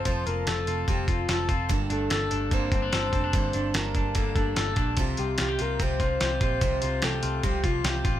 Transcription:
<<
  \new Staff \with { instrumentName = "Soft synth lead" } { \time 4/4 \key g \dorian \tempo 4 = 146 c''8 bes'8 a'4 g'8 f'4 r8 | r8 a'8 a'4 c''4 c''4 | c''4 bes'4 a'8 a'4 r8 | r8 g'8 g'8 bes'8 c''4. c''8~ |
c''4 a'4 g'8 f'4 r8 | }
  \new Staff \with { instrumentName = "Clean electric guitar" } { \time 4/4 \key g \dorian <f c' f' a'>8 f'8 a'8 f'8 c'8 f'8 a'8 f'8 | g,8 d'8 a'8 d'8 bes8 c'16 d'16 a'8 c'16 d'16 | g,8 d'4 d'8 bes8 d'8 a'8 d'8 | c8 f'8 f'16 g'16 f'8 c'8 f'8 g'8 f'8 |
c8 f'8 g'8 f'8 c'8 f'8 g'8 f'8 | }
  \new Staff \with { instrumentName = "Steel-string acoustic guitar" } { \time 4/4 \key g \dorian <f c' f' a'>8 <c' f' a'>8 <f c' f' a'>8 <c' f' a'>8 <f c' f' a'>8 <c' f' a'>8 <f c' f' a'>8 <c' f' a'>8 | <g, d g bes d' a'>8 <g bes d' a'>8 <g bes d' a'>8 <g bes d' a'>8 <g, d g bes d' a'>8 <g bes d' a'>8 <g bes d' a'>8 <g bes d' a'>8 | <g, d g bes d' a'>8 <g bes d' a'>8 <g bes d' a'>8 <g bes d' a'>8 <g, d g bes d' a'>8 <g bes d' a'>8 <g bes d' a'>8 <g bes d' a'>8 | <c f c' f' g'>8 <c' f' g'>8 <f c' f' g'>8 <c' f' g'>8 <c f c' f' g'>8 <c' f' g'>8 <f c' f' g'>8 <c' f' g'>8 |
<c f c' f' g'>8 <c' f' g'>8 <f c' f' g'>8 <c' f' g'>8 <c f c' f' g'>8 <c' f' g'>8 <f c' f' g'>8 <c' f' g'>8 | }
  \new Staff \with { instrumentName = "Picked electric bass" } { \clef bass \time 4/4 \key g \dorian f,,8 f,,8 f,,8 f,,8 f,,8 f,,8 f,,8 f,,8 | g,,8 g,,8 g,,8 g,,8 g,,8 g,,8 g,,8 f,,8 | g,,8 g,,8 g,,8 g,,8 g,,8 g,,8 g,,8 bes,,8 | c,8 c,8 c,8 c,8 c,8 c,8 c,8 bes,,8 |
c,8 c,8 c,8 c,8 c,8 c,8 c,8 a,,8 | }
  \new DrumStaff \with { instrumentName = "Drums" } \drummode { \time 4/4 <hh bd>8 hh8 <hh sn>8 hh8 <hh bd>8 <hh bd>8 <hh sn>8 <hh bd>8 | <hh bd>8 hh8 <hh sn>8 hh8 <hh bd>8 <hh bd>8 <hh sn>8 <hh bd>8 | <hh bd>8 hh8 <hh sn>8 <hh bd>8 <hh bd>8 <hh bd>8 <hh sn>8 <hh bd>8 | <hh bd>8 hh8 <hh sn>8 hh8 <hh bd>8 <hh bd>8 <hh sn>8 <hh bd>8 |
<hh bd>8 hh8 <hh sn>8 hh8 <hh bd>8 <hh bd>8 <hh sn>8 <hh bd>8 | }
>>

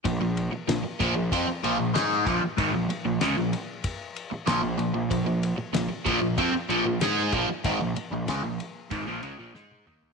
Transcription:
<<
  \new Staff \with { instrumentName = "Overdriven electric guitar" } { \clef bass \time 4/4 \key c \minor \tempo 4 = 95 <bes, f>16 <bes, f>8 r16 <bes, f>16 r16 <bes, f>16 <bes, f>16 <f c'>16 r16 <bes, f>16 <bes, f>16 <aes ees' aes'>8 <bes, f>16 r16 | <aes, ees>16 <bes, f>16 r16 <bes, f>16 <des aes>16 <bes, f>16 r4. <bes, f>16 <bes, f>16 <bes, f>16 <bes, f>16 | <bes, f>16 <bes, f>8 r16 <bes, f>16 r16 <bes, f>16 <bes, f>16 <f c'>16 r16 <bes, f>16 <bes, f>16 <aes ees' aes'>8 <bes, f>16 r16 | <aes, ees>16 <bes, f>16 r16 <bes, f>16 <des aes>16 <bes, f>16 r8 <aes, ees>16 <bes, f>16 <des aes>16 <bes, f>16 <aes ees' aes'>8 <ees bes ees'>8 | }
  \new Staff \with { instrumentName = "Picked electric bass" } { \clef bass \time 4/4 \key c \minor bes,,16 bes,,8 r16 bes,,16 r16 bes,,16 bes,,16 f,16 r16 bes,,16 bes,,16 aes,8 bes,,16 r16 | aes,,16 bes,,16 r16 bes,,16 des,16 bes,,16 r4. bes,,16 bes,,16 bes,,16 bes,,16 | bes,,16 bes,,8 r16 bes,,16 r16 bes,,16 bes,,16 f,16 r16 bes,,16 bes,,16 aes,8 bes,,16 r16 | aes,,16 bes,,16 r16 bes,,16 des,16 bes,,16 r8 aes,,16 bes,,16 des,16 bes,,16 aes,8 ees,8 | }
  \new DrumStaff \with { instrumentName = "Drums" } \drummode { \time 4/4 <bd cymr>8 cymr8 <cymr sn>8 <bd cymr sn>8 <bd cymr>8 cymr8 <cymr sn>16 sn16 <bd cymr>8 | <bd cymr>8 cymr8 <cymr sn>8 cymr8 <bd cymr>8 cymr8 <cymr sn>8 cymr8 | <bd cymr>8 cymr8 <cymr sn>8 <bd cymr>8 <bd cymr>8 cymr8 <cymr sn>16 sn16 <bd cymr>8 | <bd cymr>8 cymr8 <cymr sn>8 cymr8 <bd cymr>8 cymr8 sn16 tommh16 toml16 tomfh16 | }
>>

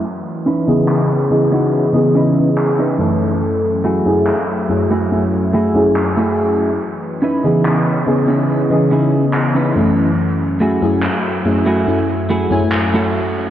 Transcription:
<<
  \new Staff \with { instrumentName = "Analog synth pad" } { \time 4/4 \key fis \dorian \tempo 4 = 71 <e cis' b' dis''>1 | <fis a e'' gis''>1 | <e cis' b' dis''>1 | <fis a e'' gis''>1 | }
  \new Staff \with { instrumentName = "Clean electric guitar" } { \time 4/4 \key fis \dorian r8 <cis' dis' e' b'>8 r8. <cis' dis' e' fis'>16 r8 <cis' dis' e' b'>8 r16 <cis' dis' e' b'>8. | r8 <a e' fis' gis'>8 r8. <a e' fis' gis'>16 r8 <a e' fis' gis'>8 r16 <a e' fis' gis'>8. | r8 <cis' dis' e' b'>8 r8. <cis' dis' e' gis'>16 r8 <cis' dis' e' gis'>8 r16 <cis' dis' e' b'>8. | r8 <a e' fis' gis'>8 r8. <a e' fis' gis'>16 r8 <a e' fis' gis'>8 r16 <a e' fis' a'>8. | }
  \new Staff \with { instrumentName = "FM electric piano" } { \time 4/4 \key fis \dorian r8. <cis e b gis' dis''>8. <cis e b gis' dis''>8. <cis e b gis' dis''>4~ <cis e b gis' dis''>16 <fis, e a cis' a'>8~ | <fis, e a cis' a'>8. <fis, a cis' e' gis'>16 r8 <fis, a cis' e' gis'>8 <fis, a cis' e'>8. <fis, a cis' e' gis'>4~ <fis, a cis' e' gis'>16 | r8. <cis e b gis' dis''>8. <cis e b gis' dis''>8. <cis e b gis' dis''>4~ <cis e b gis' dis''>16 <fis, e a cis'>8~ | <fis, e a cis'>8. <fis, a cis' e' gis'>16 r8 <fis, a cis' e' gis'>8 <fis, a cis' e'>8. <fis, a cis' e' gis''>4~ <fis, a cis' e' gis''>16 | }
  \new DrumStaff \with { instrumentName = "Drums" } \drummode { \time 4/4 r4 hc4 r4 hc4 | r4 hc4 r4 hc4 | r4 hc4 r4 hc4 | r4 hc4 r4 hc4 | }
>>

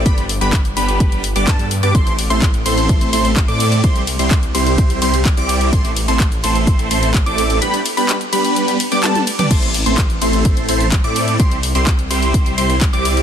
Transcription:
<<
  \new Staff \with { instrumentName = "Digital synth lead" } { \time 4/4 \key a \minor \tempo 4 = 127 b''8 r16 b''8 r16 b''4 r16 d'''16 a''8 r16 d'''16 | c'''8 r16 c'''8 r16 c'''4 c'''8 r16 d'''8. | c'''8 r16 c'''8 r16 c'''4 c'''8 r16 d'''8. | c'''8 r16 c'''8 r16 c'''4 c'''8 r16 d'''8. |
b''8 r16 b''8 r16 b''4 r16 d'''16 a''8 r16 d'''16 | c'''8 r16 c'''8 r16 c'''4 c'''8 r16 d'''8. | c'''8 r16 c'''8 r16 c'''4 c'''8 r16 d'''8. | }
  \new Staff \with { instrumentName = "Supersaw synth" } { \time 4/4 \key a \minor <g d' g'>8 r16 <g b d' g' b'>8 r16 <g b d' g' b'>4 r16 <g b d' g' d''>16 r8. <g b d' g' d''>16 | <a c' e' a' c''>8 r16 <a c' e' a' c''>8 r16 <a c' e' a' c''>4 <a c' e' a' c''>8 r16 <a c' e' a' d''>8. | <g c' e' c''>8 r16 <g c' e' g' c''>8 r16 <g c' e' g' c''>4 <g c' e' g' c''>8 r16 <g c' e' g' d''>8. | e'8 r16 <a c' e' a' c''>8 r16 <a c' e' a' c''>4 <a c' e' a' c''>8 r16 <a c' e' a' d''>8. |
<g b d' g' b'>8 r16 <g b d' g' b'>8 r16 <g b d' g' b'>4 r16 <g b d' g' d''>16 <g b d' g' a'>8 r16 <g b d' g' d''>16 | <a e' a'>8 r16 <a c' e' a' c''>8 r16 <a c' e' a' c''>4 <a c' e' a' c''>8 r16 <a c' e' a' d''>8. | e'8 r16 <g c' e' g' c''>8 r16 <g c' e' g' c''>4 <g c' e' g' c''>8 r16 <g c' e' g' d''>8. | }
  \new Staff \with { instrumentName = "Detuned saw bass" } { \clef bass \time 4/4 \key a \minor g,,8. g,,8. g,,4~ g,,16 g,,16 g,8. g,16 | a,,8. a,,8. a,,4 a,,8. a,8. | c,8. c,8. c,4 c,8. c,8. | a,,8. a,,8. a,,4 a,,8. a,,8. |
r1 | a,,8. a,,8. a,,4 a,,8. a,8. | c,8. c,8. c,4 c,8. c,8. | }
  \new DrumStaff \with { instrumentName = "Drums" } \drummode { \time 4/4 <hh bd>16 hh16 hho16 hh16 <hc hh bd>16 hh16 hho16 hh16 <hh bd>16 hh16 hho16 hh16 <hc hh bd>16 hh16 hho16 hh16 | <hh bd>16 hh16 <hho cymr>16 hh16 <hc hh bd>16 hh16 <hho cymr>16 hh16 <hh bd>16 hh16 <hho cymr>16 hh16 <hc hh bd>16 hh16 <hho cymr>16 hh16 | <hh bd>16 hh16 <hho cymr>16 hh16 <hc hh bd>16 hh16 <hho cymr>16 hh16 <hh bd>16 hh16 <hho cymr>16 hh16 <hc hh bd>16 hh16 <hho cymr>16 hh16 | <hh bd>16 hh16 <hho cymr>16 hh16 <hc hh bd>16 hh16 <hho cymr>16 hh16 <hh bd>16 hh16 <hho cymr>16 hh16 <hc hh bd>16 hh16 <hho cymr>16 hh16 |
hh16 hh16 <hho cymr>16 hho16 <hc hh>16 hh16 <hho cymr>16 hh16 hh16 hh16 <hho cymr>16 hh16 <hc hh tommh>16 <hh tommh>16 <hho cymr>16 <hh toml>16 | <cymc hh bd>16 hh16 <hho cymr>16 hh16 <hc hh bd>16 hh16 <hho cymr>16 hh16 <hh bd>16 hh16 <hho cymr>16 hh16 <hc hh bd>16 hh16 <hho cymr>16 hh16 | <hh bd>16 hh16 <hho cymr>16 hh16 <hc hh bd>16 hh16 <hho cymr>16 hh16 <hh bd>16 hh16 <hho cymr>16 hh16 <hc hh bd>16 hh16 <hho cymr>16 hh16 | }
>>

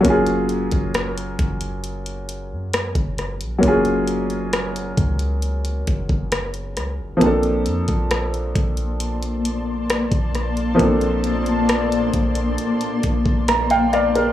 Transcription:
<<
  \new Staff \with { instrumentName = "Ambient pad" } { \time 4/4 \key bes \major \tempo 4 = 67 r1 | r1 | <bes d'' a'' c'''>1~ | <bes d'' a'' c'''>1 | }
  \new Staff \with { instrumentName = "Grand piano" } { \time 4/4 \key bes \major << { r1 | r1 | r1 | r2. bes''16 <f'' g''>16 <d'' f''>16 bes'16 | } \\ { <ges bes des' f' aes'>1 | <ges bes des' f' aes'>1 | <f bes c' d' a'>1 | <f bes c' d' a'>1 | } >> }
  \new Staff \with { instrumentName = "808-style bass" } { \clef bass \time 4/4 \key bes \major ges,,8. ges,,8. ges,,4~ ges,,16 ges,8 ges,,8 bes,,16 | ges,,4. des,4 ges,,16 ges,,8. des,16 ges,,16 | bes,,8 f,16 bes,,8. bes,,4.~ bes,,16 bes,,8. | bes,,4. bes,,8 r8 bes,,16 bes,,4~ bes,,16 | }
  \new DrumStaff \with { instrumentName = "Drums" } \drummode { \time 4/4 <hh bd>16 hh16 hh16 <hh bd>16 <hh ss>16 hh16 <hh bd>16 hh16 hh16 hh16 hh8 <hh ss>16 <hh bd>16 <hh ss>16 hh16 | <hh bd>16 hh16 hh16 hh16 <hh ss>16 hh16 <hh bd>16 hh16 hh16 hh16 <hh bd>16 bd16 <hh ss>16 hh16 <hh ss>8 | <hh bd>16 hh16 hh16 <hh bd>16 <hh ss>16 hh16 <hh bd>16 hh16 hh16 hh16 hh8 <hh ss>16 <hh bd>16 <hh ss>16 hh16 | <hh bd>16 hh16 hh16 hh16 <hh ss>16 hh16 <hh bd>16 hh16 hh16 hh16 <hh bd>16 bd16 <hh ss>16 hh16 <hh ss>16 hh16 | }
>>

